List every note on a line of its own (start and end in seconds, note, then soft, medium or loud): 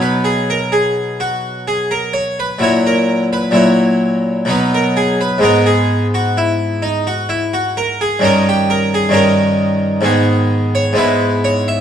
0.00 2.55 B2 soft
0.00 2.56 F#3 soft
0.00 2.56 B3 soft
0.00 2.57 D#4 soft
0.00 0.25 B4 medium
0.24 0.48 G#4 medium
0.50 0.73 A#4 medium
0.72 1.20 G#4 medium
1.20 1.67 F#4 medium
1.68 1.91 G#4 medium
1.91 2.14 A#4 medium
2.13 2.37 C#5 medium
2.40 2.62 B4 medium
2.59 3.50 A#2 medium
2.59 3.51 F#3 soft
2.59 3.52 E4 soft
2.63 2.86 C#5 medium
2.87 3.26 A#4 medium
3.33 3.56 B4 medium
3.51 4.44 A#2 soft
3.51 4.44 F#3 soft
3.51 4.45 E4 soft
3.56 4.49 C#5 medium
4.45 5.38 B2 soft
4.45 5.38 F#3 soft
4.45 5.39 B3 soft
4.45 5.40 D#4 soft
4.50 4.73 B4 medium
4.74 4.97 A#4 medium
4.97 5.20 G#4 medium
5.21 5.43 B4 medium
5.38 8.15 G#2 soft
5.38 8.16 G#3 soft
5.38 8.17 B3 soft
5.38 6.81 D#4 soft
5.44 5.66 A#4 medium
5.66 6.05 G#4 medium
6.14 6.36 F#4 medium
6.37 6.82 E4 medium
6.82 7.05 D#4 medium
7.07 7.29 F#4 medium
7.29 7.52 E4 medium
7.54 7.76 F#4 medium
7.77 7.99 A#4 medium
8.01 8.23 G#4 medium
8.19 9.08 G2 medium
8.19 9.09 D#3 soft
8.19 9.10 C#4 soft
8.24 9.11 D#4 soft
8.24 8.46 A#4 loud
8.49 8.70 G4 medium
8.70 8.92 A#4 medium
8.94 9.15 G#4 medium
9.09 9.99 G2 medium
9.09 10.00 D#3 soft
9.09 10.01 C#4 soft
9.09 10.01 D#4 soft
9.14 10.74 A#4 medium
10.01 10.92 G#2 medium
10.01 10.93 D#3 soft
10.01 10.94 B3 soft
10.01 10.94 G#4 soft
10.75 10.97 C#5 medium
10.93 11.81 G#2 medium
10.93 11.81 G#3 medium
10.93 11.81 B3 soft
10.93 11.81 E4 soft
10.98 11.37 B4 loud
11.44 11.67 C#5 loud
11.68 11.81 E5 loud